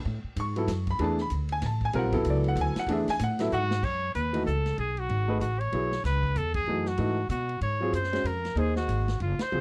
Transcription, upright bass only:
0.05 0.23 A2 loud
0.24 muted upright bass stroke soft
0.36 0.67 G#2 medium
0.68 0.98 F#2 loud
0.99 1.30 E2 medium
1.31 1.61 D2 medium
1.62 1.93 A1 loud
1.94 2.05 B1 loud
2.05 2.14 A1 medium
2.15 2.24 E1 medium
2.25 2.55 C#2 loud
2.55 2.74 D2 loud
2.76 muted upright bass stroke soft
2.87 3.05 E2 loud
3.08 muted upright bass stroke soft
3.20 3.51 A2 loud
3.52 3.82 G#2 loud
3.83 4.14 F#2 medium
4.15 4.46 D#2 medium
4.46 4.77 C#2 medium
4.78 5.09 B1 medium
5.09 5.40 G#1 medium
5.40 5.71 A1 medium
5.72 6.03 B1 medium
6.04 6.35 C#2 medium
6.36 6.66 E2 loud
6.66 6.97 F#2 medium
6.98 7.29 G#2 medium
7.29 7.61 B2 medium
7.61 7.92 G#2 medium
7.93 8.23 F#2 medium
8.24 8.55 F2 medium
8.55 8.87 D#2 medium
8.88 9.19 G#1 medium
9.20 9.38 F#1 medium
9.39 muted upright bass stroke soft
9.52 9.61 C#2 medium

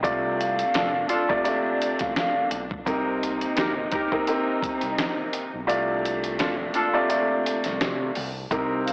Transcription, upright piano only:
0.03 1.18 C3 medium
0.03 1.18 A3 medium
0.03 1.18 F4 medium
0.03 1.19 D5 loud
1.29 1.43 C3 medium
1.29 1.43 A3 medium
1.29 1.43 F4 medium
1.29 1.44 D5 loud
1.44 2.60 C3 medium
1.44 2.60 A3 medium
1.44 2.60 F4 medium
1.44 2.60 D5 loud
2.86 4.01 C3 loud
2.86 4.01 C4 medium
2.86 4.01 D#4 medium
2.86 4.02 A#4 loud
4.12 4.27 C3 medium
4.12 4.27 C4 medium
4.12 4.27 D#4 medium
4.12 4.28 A#4 loud
4.28 5.43 C3 medium
4.28 5.43 C4 medium
4.28 5.43 D#4 medium
4.28 5.43 A#4 loud
5.67 6.83 C3 medium
5.67 6.83 A3 medium
5.67 6.83 F4 medium
5.67 6.83 D5 loud
6.94 7.07 C3 loud
6.94 7.08 A3 medium
6.94 7.08 F4 medium
6.94 7.08 D5 loud
7.09 8.24 C3 medium
7.09 8.24 A3 medium
7.09 8.24 F4 medium
7.09 8.25 D5 loud
8.51 8.93 C3 loud
8.51 8.93 C4 medium
8.51 8.93 D#4 medium
8.51 8.93 A#4 loud

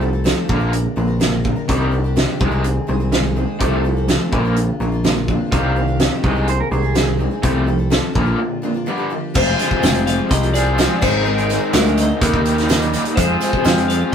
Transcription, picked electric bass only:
0.00 0.32 C2 medium
0.49 0.86 A#1 loud
0.97 1.52 A#1 medium
1.69 2.24 C2 loud
2.41 2.77 C2 loud
2.89 3.44 C2 medium
3.61 4.16 C2 loud
4.33 4.69 A#1 loud
4.80 5.35 A#1 medium
5.52 6.07 C2 loud
6.24 6.60 C2 medium
6.72 7.27 C2 medium
7.43 7.98 C2 loud
8.15 8.34 A#1 medium
9.35 9.53 F1 medium
9.83 10.20 F1 medium
10.31 10.85 C2 medium
11.02 11.57 G#1 medium
11.74 12.10 D2 medium
12.22 12.95 D#2 medium
13.17 13.36 F2 medium
13.65 14.02 F2 medium

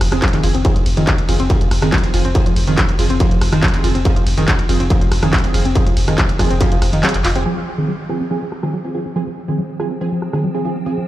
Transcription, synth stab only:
0.12 0.20 F3 medium
0.12 0.20 C4 medium
0.12 0.20 G#4 loud
0.33 0.41 F3 medium
0.33 0.41 C4 medium
0.33 0.41 G#4 medium
0.43 0.52 F3 medium
0.43 0.52 C4 medium
0.43 0.52 G#4 loud
0.65 0.73 F3 loud
0.65 0.73 C4 medium
0.65 0.73 G#4 loud
0.97 1.10 F3 medium
0.97 1.10 C4 medium
0.97 1.10 G#4 medium
1.29 1.42 F3 medium
1.29 1.42 C4 medium
1.29 1.42 G#4 loud
1.50 1.59 F3 medium
1.50 1.59 C4 medium
1.50 1.59 G#4 loud
1.82 1.90 F3 medium
1.82 1.90 C4 medium
1.82 1.90 G#4 medium
2.04 2.11 F3 medium
2.04 2.11 C4 medium
2.04 2.11 G#4 medium
2.14 2.22 F3 medium
2.14 2.22 C4 medium
2.14 2.22 G#4 loud
2.35 2.44 F3 medium
2.35 2.44 C4 medium
2.35 2.44 G#4 loud
2.67 2.80 F3 medium
2.67 2.80 C4 medium
2.67 2.80 G#4 medium
2.99 3.12 F3 medium
2.99 3.12 C4 medium
2.99 3.12 G#4 loud
3.20 3.29 F3 medium
3.20 3.29 C4 medium
3.20 3.29 G#4 loud
3.52 3.60 F3 medium
3.52 3.60 C4 medium
3.52 3.60 G#4 medium
3.74 3.81 F3 medium
3.74 3.82 C4 medium
3.74 3.81 G#4 medium
3.84 3.93 F3 medium
3.84 3.93 C4 medium
3.84 3.93 G#4 loud
4.05 4.14 F3 medium
4.05 4.14 C4 medium
4.05 4.14 G#4 loud
4.38 4.51 F3 medium
4.38 4.51 C4 medium
4.38 4.51 G#4 medium
4.69 4.83 F3 medium
4.69 4.83 C4 medium
4.69 4.83 G#4 loud
4.90 4.99 F3 medium
4.90 4.99 C4 medium
4.90 4.99 G#4 loud
5.23 5.31 F3 medium
5.23 5.31 C4 medium
5.23 5.31 G#4 loud
5.44 5.52 F3 medium
5.44 5.52 C4 medium
5.44 5.52 G#4 medium
5.54 5.63 F3 medium
5.54 5.63 C4 medium
5.54 5.63 G#4 loud
5.76 5.84 F3 loud
5.76 5.84 C4 medium
5.76 5.84 G#4 loud
6.08 6.21 F3 medium
6.08 6.21 C4 medium
6.08 6.21 G#4 medium
6.39 6.53 F3 medium
6.39 6.53 C4 medium
6.39 6.53 G#4 loud
6.61 6.69 F3 medium
6.61 6.69 C4 medium
6.61 6.69 G#4 loud
7.03 7.12 F3 medium
7.03 7.12 C4 medium
7.03 7.12 G#4 loud
7.35 7.43 F3 medium
7.35 7.43 C4 medium
7.35 7.43 G#4 medium
7.46 7.54 F3 medium
7.46 7.54 C4 medium
7.46 7.54 G#4 loud
7.78 7.91 F3 medium
7.78 7.91 C4 medium
7.78 7.91 G#4 medium
8.10 8.23 F3 medium
8.10 8.23 C4 medium
8.10 8.23 G#4 loud
8.31 8.39 F3 medium
8.31 8.39 C4 medium
8.31 8.39 G#4 loud
8.63 8.71 F3 medium
8.63 8.71 C4 medium
8.63 8.71 G#4 medium
8.84 8.92 F3 medium
8.84 8.92 C4 medium
8.84 8.92 G#4 medium
8.95 9.03 F3 medium
8.95 9.03 C4 medium
8.95 9.03 G#4 medium
9.16 9.24 F3 medium
9.16 9.24 C4 medium
9.16 9.24 G#4 loud
9.48 9.61 F3 medium
9.48 9.61 C4 medium
9.48 9.61 G#4 medium
9.80 9.93 F3 medium
9.80 9.93 C4 medium
9.80 9.93 G#4 medium
10.01 10.10 F3 medium
10.01 10.10 C4 medium
10.01 10.10 G#4 loud
10.33 10.41 F3 medium
10.33 10.41 C4 medium
10.33 10.41 G#4 medium
10.54 10.62 F3 medium
10.54 10.62 C4 medium
10.54 10.62 G#4 medium
10.65 10.73 F3 medium
10.65 10.73 C4 medium
10.65 10.73 G#4 medium
10.86 10.95 F3 loud
10.86 10.95 C4 medium
10.86 10.95 G#4 loud

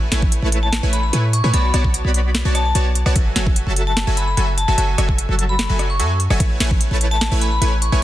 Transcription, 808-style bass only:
0.12 0.40 A1 loud
0.43 0.81 A1 loud
0.83 1.11 A1 loud
1.13 1.42 A2 medium
1.44 1.52 A2 loud
1.54 1.72 B1 loud
1.74 2.03 B1 medium
2.05 2.43 B1 medium
2.45 2.73 B1 loud
2.75 3.04 B1 loud
3.06 3.17 B1 loud
3.16 3.34 F#1 loud
3.36 3.65 F#1 medium
3.67 4.05 F#1 loud
4.07 4.35 F#1 loud
4.37 4.66 F#1 loud
4.68 4.76 F#1 medium
4.78 4.96 F#1 loud
4.98 5.27 F#1 loud
5.29 5.67 F#1 loud
5.70 6.01 F#1 medium
6.00 6.28 F#2 loud
6.30 6.38 F#1 loud
6.40 6.58 A1 medium
6.60 6.89 A1 loud
6.91 7.30 A1 loud
7.32 7.60 A1 loud
7.62 7.90 A1 loud
7.92 8.00 A1 loud

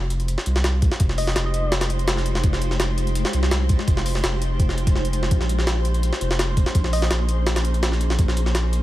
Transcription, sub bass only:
0.00 0.36 F1 loud
0.46 0.90 C2 medium
1.00 1.35 F1 loud
1.36 2.43 F1 medium
2.44 3.24 F1 loud
3.34 3.78 C2 medium
3.88 4.22 F1 loud
4.23 4.95 F1 medium
4.95 5.30 F1 medium
5.31 6.11 A#1 loud
6.21 6.65 F1 medium
6.75 7.10 A#1 loud
7.11 8.17 A#1 medium
8.19 8.83 A#1 loud

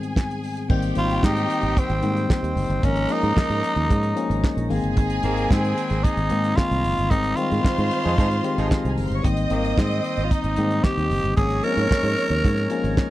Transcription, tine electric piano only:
0.00 0.72 G#2 medium
0.00 0.69 D#3 medium
0.00 0.70 G3 medium
0.00 0.71 G#3 medium
0.00 0.72 B3 medium
0.00 0.70 C4 medium
0.69 0.89 D#3 medium
0.69 0.90 G3 medium
0.69 0.90 A#3 medium
0.69 0.90 C4 loud
0.96 1.76 D#3 medium
0.96 1.76 G3 medium
0.96 1.76 A#3 medium
0.96 1.77 C4 medium
2.02 2.63 D#3 medium
2.02 2.63 G3 medium
2.02 2.63 A#3 medium
2.02 2.63 C4 medium
2.83 3.03 F3 medium
2.83 3.03 G#3 medium
2.83 3.03 A#3 medium
2.83 3.04 C#4 medium
3.09 3.90 F3 medium
3.09 3.90 G#3 medium
3.09 3.90 A#3 medium
3.09 3.90 C#4 medium
4.15 4.70 F3 medium
4.15 4.68 G#3 medium
4.15 4.69 A#3 medium
4.15 4.70 C#4 medium
4.69 5.13 D#3 medium
4.69 5.13 G#3 medium
4.69 5.13 A#3 medium
4.69 5.13 C4 loud
5.23 6.03 D#3 medium
5.23 6.04 G#3 medium
5.23 6.04 A#3 medium
5.23 6.04 C4 medium
6.29 6.90 D#3 medium
6.29 6.90 G#3 medium
6.29 6.90 A#3 medium
6.29 6.91 C4 medium
7.10 7.30 D#3 medium
7.10 7.31 G3 medium
7.10 7.31 G#3 medium
7.10 7.31 C4 medium
7.37 8.17 D#3 medium
7.37 8.17 G3 medium
7.37 8.17 G#3 medium
7.37 8.18 C4 medium
8.43 9.04 D#3 medium
8.43 9.04 G#3 medium
8.43 9.04 C4 loud
8.43 9.04 G4 medium
9.23 9.44 D#3 medium
9.23 9.44 G3 medium
9.23 9.44 A#3 medium
9.23 9.44 C4 medium
9.50 10.30 D#3 medium
9.50 10.30 G3 medium
9.50 10.30 A#3 medium
9.50 10.31 C4 medium
10.57 11.17 D#3 medium
10.57 11.17 G3 medium
10.57 11.17 A#3 medium
10.57 11.18 C4 medium
11.37 11.57 F3 medium
11.37 11.58 G#3 medium
11.37 11.58 A#3 medium
11.37 11.58 C#4 medium
11.64 12.44 F3 medium
11.64 12.44 G#3 medium
11.64 12.44 A#3 medium
11.64 11.71 C4 medium
11.72 12.48 C#4 medium
12.70 13.10 F3 loud
12.70 13.10 G#3 medium
12.70 13.10 A#3 medium
12.70 13.10 C#4 loud

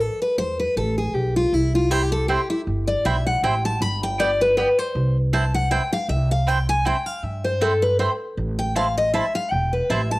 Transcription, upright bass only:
0.38 0.66 E2 medium
0.76 1.09 A1 medium
1.15 1.47 B1 medium
1.53 2.35 C2 medium
2.67 2.95 G1 medium
3.05 3.37 B1 medium
3.42 3.75 A1 medium
3.81 4.63 G1 loud
4.95 5.78 C2 medium
6.08 6.91 C2 medium
7.23 8.06 G2 medium
8.37 9.20 A1 medium
9.52 9.80 E1 medium
9.90 10.19 A1 medium

